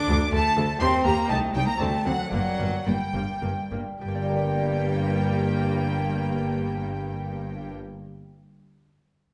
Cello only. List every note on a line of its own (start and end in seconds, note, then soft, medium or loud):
0.00 0.31 D4 loud
0.31 0.67 A3 loud
0.80 1.06 C4 medium
1.05 1.31 A#3 medium
1.30 1.56 A3 medium
1.54 1.68 G3 medium
1.67 1.79 A#3 medium
1.80 2.06 A3 medium
2.05 2.31 F#3 medium
2.32 2.88 F#3 loud
2.86 3.71 G3 medium
4.00 7.71 G3 medium